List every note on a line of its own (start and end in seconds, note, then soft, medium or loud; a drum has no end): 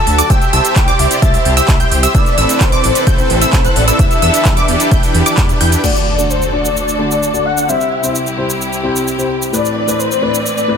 0.00 0.28 D3 medium
0.00 0.26 D4 medium
0.00 0.15 F#4 medium
0.00 0.28 F#4 medium
0.00 0.15 A4 medium
0.00 0.28 A4 medium
0.00 0.15 E5 medium
0.00 0.31 A5 loud
0.00 0.15 E6 medium
0.07 0.22 D2 medium
0.07 open hi-hat loud
0.18 0.28 F#4 medium
0.18 0.28 A4 medium
0.18 0.28 D5 medium
0.18 0.28 D6 medium
0.18 closed hi-hat medium
0.18 shaker medium
0.30 0.38 C2 loud
0.30 2.13 C3 medium
0.30 2.13 C4 medium
0.30 2.13 E4 medium
0.30 2.13 G4 medium
0.30 0.50 G4 medium
0.30 0.50 C5 medium
0.30 0.50 E5 loud
0.30 0.55 G5 loud
0.30 0.50 E6 loud
0.30 kick loud
0.30 closed hi-hat medium
0.30 shaker medium
0.42 closed hi-hat soft
0.42 shaker soft
0.53 0.61 C2 loud
0.53 0.85 G4 loud
0.53 0.85 C5 medium
0.53 0.85 E5 loud
0.53 0.76 A5 loud
0.53 0.85 E6 loud
0.53 open hi-hat loud
0.65 closed hi-hat medium
0.65 shaker medium
0.76 0.91 C2 loud
0.76 1.01 G5 loud
0.76 kick loud
0.76 clap loud
0.76 closed hi-hat medium
0.76 shaker medium
0.88 1.20 G4 loud
0.88 1.20 C5 medium
0.88 1.20 D5 loud
0.88 1.20 D6 loud
0.88 closed hi-hat soft
0.88 shaker soft
0.99 1.07 C2 medium
0.99 1.92 E5 medium
0.99 open hi-hat loud
1.11 closed hi-hat medium
1.11 shaker medium
1.22 1.38 C2 loud
1.22 1.54 G4 medium
1.22 1.54 C5 medium
1.22 1.54 A5 medium
1.22 1.54 A6 loud
1.22 kick loud
1.22 closed hi-hat medium
1.22 shaker medium
1.34 open hi-hat medium
1.34 shaker soft
1.45 1.61 C2 loud
1.45 open hi-hat loud
1.57 1.77 G4 loud
1.57 1.77 C5 medium
1.57 1.77 E5 loud
1.57 1.77 E6 loud
1.57 closed hi-hat medium
1.57 shaker medium
1.68 1.84 C2 medium
1.68 kick loud
1.68 clap loud
1.68 closed hi-hat medium
1.68 shaker medium
1.80 2.00 G4 medium
1.80 2.00 C5 medium
1.80 2.00 G5 medium
1.80 2.00 G6 medium
1.80 closed hi-hat soft
1.80 shaker soft
1.92 2.07 C2 medium
1.92 open hi-hat loud
2.03 2.13 G4 medium
2.03 2.13 C5 medium
2.03 2.13 E5 medium
2.03 2.13 E6 loud
2.03 closed hi-hat medium
2.03 shaker medium
2.15 2.22 A1 loud
2.15 3.97 C3 medium
2.15 3.97 A3 medium
2.15 2.35 C4 medium
2.15 2.35 E4 medium
2.15 2.35 A4 medium
2.15 5.80 A4 medium
2.15 2.35 B4 medium
2.15 2.62 D5 loud
2.15 2.35 E5 loud
2.15 2.35 E6 loud
2.15 kick loud
2.15 closed hi-hat medium
2.15 shaker medium
2.26 closed hi-hat soft
2.26 shaker soft
2.38 2.45 A1 loud
2.38 2.70 C4 loud
2.38 2.70 E4 medium
2.38 2.70 A4 medium
2.38 2.70 B4 medium
2.38 2.70 E5 loud
2.38 2.70 E6 loud
2.38 open hi-hat loud
2.49 closed hi-hat medium
2.49 shaker medium
2.61 2.76 A1 medium
2.61 3.06 C5 medium
2.61 kick loud
2.61 clap loud
2.61 closed hi-hat medium
2.61 shaker medium
2.72 3.04 C4 loud
2.72 3.04 E4 medium
2.72 3.04 A4 medium
2.72 3.04 B4 medium
2.72 3.04 D5 loud
2.72 3.04 D6 loud
2.72 closed hi-hat soft
2.72 shaker soft
2.84 2.92 A1 medium
2.84 open hi-hat loud
2.95 closed hi-hat medium
2.95 shaker medium
3.07 3.22 A1 loud
3.07 3.39 C4 medium
3.07 3.39 E4 medium
3.07 3.39 A4 medium
3.07 3.78 C5 loud
3.07 3.39 G5 loud
3.07 3.39 G6 loud
3.07 kick loud
3.07 closed hi-hat medium
3.07 shaker medium
3.18 closed hi-hat soft
3.18 shaker soft
3.30 3.45 A1 loud
3.30 open hi-hat loud
3.41 3.62 C4 loud
3.41 3.62 E4 loud
3.41 3.62 A4 loud
3.41 3.62 B4 loud
3.41 3.62 E5 loud
3.41 3.62 E6 loud
3.41 closed hi-hat medium
3.41 shaker medium
3.53 3.68 A1 medium
3.53 kick loud
3.53 clap loud
3.53 closed hi-hat medium
3.53 shaker medium
3.65 3.84 C4 medium
3.65 3.84 E4 medium
3.65 3.84 A4 medium
3.65 3.84 B4 medium
3.65 3.84 F#5 medium
3.65 3.84 F#6 medium
3.65 closed hi-hat soft
3.65 shaker soft
3.76 3.92 A1 medium
3.76 4.01 D5 loud
3.76 open hi-hat loud
3.88 3.97 C4 medium
3.88 3.98 E4 medium
3.88 3.97 A4 medium
3.88 3.98 B4 medium
3.88 3.98 E5 medium
3.88 3.98 E6 loud
3.88 closed hi-hat medium
3.88 shaker medium
3.99 4.07 E2 loud
3.99 5.82 E3 medium
3.99 4.20 D4 loud
3.99 5.82 D4 medium
3.99 4.20 E4 medium
3.99 4.20 G4 medium
3.99 5.82 G4 medium
3.99 4.20 B4 medium
3.99 5.38 E5 loud
3.99 4.20 E5 loud
3.99 4.20 E6 loud
3.99 kick loud
3.99 closed hi-hat medium
3.99 shaker medium
4.11 closed hi-hat soft
4.11 shaker soft
4.22 4.30 E2 loud
4.22 4.54 D4 loud
4.22 4.54 E4 medium
4.22 4.54 G4 medium
4.22 4.54 B4 medium
4.22 4.54 E5 loud
4.22 4.54 E6 loud
4.22 open hi-hat loud
4.34 closed hi-hat medium
4.34 shaker medium
4.45 4.61 E2 loud
4.45 kick loud
4.45 clap loud
4.45 closed hi-hat medium
4.45 shaker medium
4.57 4.89 D4 loud
4.57 4.89 E4 medium
4.57 4.89 G4 medium
4.57 4.89 B4 medium
4.57 4.89 D5 loud
4.57 4.89 D6 loud
4.57 closed hi-hat soft
4.57 shaker soft
4.68 4.76 E2 medium
4.68 open hi-hat loud
4.80 closed hi-hat medium
4.80 shaker medium
4.91 4.99 E1 medium
4.91 5.23 D4 medium
4.91 5.23 E4 medium
4.91 5.23 G4 medium
4.91 5.23 B4 medium
4.91 5.23 G5 loud
4.91 5.23 G6 loud
4.91 kick loud
4.91 closed hi-hat medium
4.91 shaker medium
5.03 open hi-hat medium
5.03 shaker soft
5.15 5.22 E2 loud
5.15 open hi-hat loud
5.26 5.58 D4 medium
5.26 5.58 E4 medium
5.26 5.58 G4 medium
5.26 5.58 B4 medium
5.26 5.58 D5 medium
5.26 5.58 D6 medium
5.26 closed hi-hat medium
5.26 shaker medium
5.37 5.53 E2 medium
5.37 kick loud
5.37 clap loud
5.37 closed hi-hat medium
5.37 shaker medium
5.49 closed hi-hat soft
5.49 shaker soft
5.61 5.76 E2 medium
5.61 5.81 D4 medium
5.61 5.81 E4 medium
5.61 5.81 G4 medium
5.61 5.81 B4 medium
5.61 5.81 G5 medium
5.61 5.81 G6 medium
5.61 open hi-hat loud
5.72 closed hi-hat medium
5.72 shaker medium
5.83 7.67 D2 medium
5.83 6.15 D3 medium
5.83 7.67 D3 medium
5.83 6.15 A3 medium
5.83 6.16 D4 medium
5.83 7.67 F#4 medium
5.83 6.16 F#4 medium
5.83 7.67 A4 medium
5.83 6.32 D5 medium
5.83 6.16 D5 medium
5.83 crash medium
5.83 impact medium
5.83 shaker medium
5.96 shaker soft
6.18 6.38 D3 medium
6.18 6.38 A3 medium
6.18 6.38 D4 medium
6.18 6.38 F#4 medium
6.18 6.39 D5 medium
6.18 shaker medium
6.30 6.53 C5 medium
6.30 shaker medium
6.42 shaker soft
6.52 6.65 D3 medium
6.52 6.65 A3 medium
6.52 6.65 D4 medium
6.52 6.66 F#4 medium
6.52 6.75 D5 medium
6.52 6.66 D5 medium
6.65 shaker medium
6.76 7.47 D5 loud
6.76 shaker medium
6.88 shaker soft
6.99 7.19 D3 medium
6.99 7.19 A3 medium
6.99 7.19 D4 medium
6.99 7.19 F#4 medium
6.99 7.19 D5 medium
7.11 shaker medium
7.23 shaker medium
7.33 7.65 D3 medium
7.33 7.66 A3 medium
7.33 7.66 D4 medium
7.33 7.66 F#4 medium
7.33 7.66 D5 medium
7.33 shaker soft
7.45 7.70 F#5 loud
7.58 shaker medium
7.68 9.51 C2 medium
7.68 8.00 C3 medium
7.68 9.51 C3 medium
7.68 8.00 G3 medium
7.68 8.00 C4 medium
7.68 9.51 E4 medium
7.68 8.00 E4 medium
7.68 9.51 G4 medium
7.68 8.01 C5 medium
7.68 8.15 E5 loud
7.68 shaker medium
7.81 shaker soft
8.03 8.23 C3 medium
8.03 8.23 G3 medium
8.03 8.23 C4 medium
8.03 8.23 E4 medium
8.03 8.23 C5 medium
8.03 shaker medium
8.15 shaker medium
8.27 shaker soft
8.37 8.50 C3 medium
8.37 8.50 G3 medium
8.37 8.50 C4 medium
8.37 8.50 E4 medium
8.37 8.50 C5 medium
8.50 shaker medium
8.62 shaker soft
8.73 shaker soft
8.83 9.03 C3 medium
8.83 9.04 G3 medium
8.83 9.04 C4 medium
8.83 9.04 E4 medium
8.83 9.04 C5 medium
8.96 shaker medium
9.08 shaker medium
9.18 9.50 C3 medium
9.18 9.50 G3 medium
9.18 9.50 C4 medium
9.18 9.50 E4 medium
9.18 9.51 C5 medium
9.18 shaker soft
9.42 shaker medium
9.52 9.85 A2 medium
9.52 10.77 A2 medium
9.52 10.77 E3 medium
9.52 9.85 A3 medium
9.52 9.85 C4 medium
9.52 10.77 C4 medium
9.52 9.85 E4 medium
9.52 10.77 B4 medium
9.52 9.85 B4 medium
9.52 9.75 D5 medium
9.52 shaker soft
9.65 shaker soft
9.76 10.01 D5 medium
9.87 10.07 A2 medium
9.87 10.07 A3 medium
9.87 10.08 C4 medium
9.87 10.08 E4 medium
9.87 10.08 B4 medium
9.87 shaker medium
9.99 10.24 C5 medium
9.99 shaker soft
10.12 shaker soft
10.22 10.34 A2 medium
10.22 10.35 A3 medium
10.22 10.35 C4 medium
10.22 10.35 E4 medium
10.22 10.35 B4 medium
10.22 10.45 D5 medium
10.35 shaker medium
10.45 10.77 D5 loud
10.45 shaker soft
10.58 shaker soft
10.68 10.77 A2 medium
10.68 10.77 A3 medium
10.68 10.77 C4 medium
10.68 10.77 E4 medium
10.68 10.77 B4 medium